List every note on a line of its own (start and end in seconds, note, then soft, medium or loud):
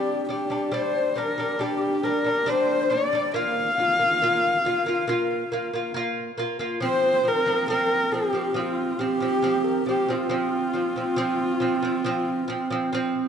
0.00 0.21 G3 loud
0.00 0.22 D4 loud
0.00 0.26 G4 medium
0.00 0.27 G4 medium
0.29 0.47 G3 medium
0.29 0.47 D4 medium
0.29 0.74 G4 medium
0.50 0.68 G3 medium
0.50 0.69 D4 medium
0.72 1.07 G3 loud
0.72 1.08 D4 loud
0.72 1.19 C5 medium
0.72 0.77 D5 medium
0.76 1.18 C5 medium
1.16 1.34 G3 medium
1.16 1.35 D4 medium
1.16 1.61 A#4 medium
1.16 1.62 A#4 medium
1.38 1.56 G3 medium
1.38 1.56 D4 medium
1.59 1.95 G3 medium
1.59 1.95 D4 loud
1.59 2.04 G4 medium
1.59 2.06 G4 medium
2.03 2.21 G3 medium
2.03 2.22 D4 medium
2.03 2.51 A#4 medium
2.03 2.09 C5 medium
2.08 2.49 A#4 medium
2.24 2.42 G3 medium
2.24 2.43 D4 medium
2.46 2.82 G3 loud
2.46 2.82 D4 loud
2.46 2.92 C5 loud
2.46 2.52 D5 medium
2.51 2.92 C5 medium
2.90 3.08 G3 medium
2.90 3.09 D4 medium
2.90 3.37 D5 medium
3.13 3.30 G3 medium
3.13 3.31 D4 medium
3.34 3.69 A#3 medium
3.34 3.70 F4 loud
3.34 5.96 F5 loud
3.34 5.96 F5 medium
3.78 3.95 A#3 medium
3.78 3.96 F4 medium
3.99 4.17 A#3 medium
3.99 4.18 F4 medium
4.22 4.57 A#3 medium
4.22 4.57 F4 loud
4.65 4.82 A#3 medium
4.65 4.83 F4 medium
4.86 5.04 A#3 medium
4.86 5.05 F4 medium
5.07 5.43 A#3 medium
5.07 5.44 F4 loud
5.52 5.69 A#3 medium
5.52 5.70 F4 medium
5.73 5.91 A#3 medium
5.73 5.92 F4 medium
5.94 6.30 A#3 loud
5.94 6.31 F4 loud
6.38 6.56 A#3 medium
6.38 6.57 F4 medium
6.59 6.78 A#3 medium
6.59 6.78 F4 medium
6.81 7.17 F3 medium
6.81 7.17 C4 loud
6.81 7.27 C5 loud
6.81 7.29 C5 loud
7.23 7.42 F3 medium
7.23 7.43 C4 medium
7.23 7.32 C5 medium
7.28 7.70 A#4 loud
7.28 7.70 A#4 medium
7.46 7.65 F3 medium
7.46 7.65 C4 medium
7.68 8.04 F3 loud
7.68 8.05 C4 loud
7.68 8.15 A#4 loud
7.68 8.15 A#4 medium
8.12 8.30 F3 medium
8.12 8.31 C4 medium
8.12 8.61 G4 medium
8.12 8.59 G4 medium
8.33 8.52 F3 medium
8.33 8.53 C4 medium
8.54 8.91 F3 medium
8.54 8.92 C4 loud
8.54 9.02 F4 medium
8.60 9.01 F4 medium
8.99 9.17 F3 medium
8.99 9.18 C4 medium
8.99 9.88 G4 loud
8.99 9.66 G4 medium
9.20 9.39 F3 medium
9.20 9.40 C4 medium
9.42 9.78 F3 medium
9.42 9.79 C4 loud
9.64 9.87 A#4 medium
9.86 10.05 F3 medium
9.86 10.06 C4 medium
9.86 10.09 G4 medium
9.86 10.13 G4 medium
10.08 10.27 F3 medium
10.08 10.28 C4 medium
10.08 13.28 F4 medium
10.29 10.66 F3 loud
10.29 10.66 C4 loud
10.73 10.92 F3 medium
10.73 10.93 C4 medium
10.96 11.14 F3 medium
10.96 11.15 C4 medium
11.16 11.53 F3 loud
11.16 11.54 C4 loud
11.60 11.79 F3 medium
11.60 11.80 C4 medium
11.82 12.01 F3 medium
11.82 12.02 C4 loud
12.05 12.41 F3 loud
12.05 12.41 C4 loud
12.48 12.67 F3 medium
12.48 12.68 C4 loud
12.70 12.89 F3 medium
12.70 12.90 C4 loud
12.93 13.28 F3 loud
12.93 13.28 C4 loud